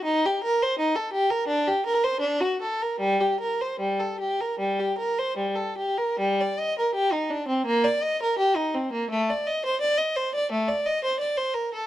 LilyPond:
\new Staff \with { instrumentName = "Violin" } { \time 4/4 \key g \minor \tempo 4 = 83 ees'16 g'16 bes'16 c''16 ees'16 a'16 g'16 bes'16 d'16 g'16 bes'16 c''16 d'16 fis'16 a'16 bes'16 | g16 g'16 bes'16 c''16 g16 a'16 g'16 bes'16 g16 g'16 bes'16 c''16 g16 a'16 g'16 bes'16 | g16 d''16 ees''16 bes'16 g'16 ees'16 d'16 c'16 bes16 d''16 ees''16 bes'16 g'16 ees'16 c'16 bes16 | a16 d''16 ees''16 c''16 d''16 ees''16 c''16 d''16 a16 d''16 ees''16 c''16 d''16 c''16 bes'16 a'16 | }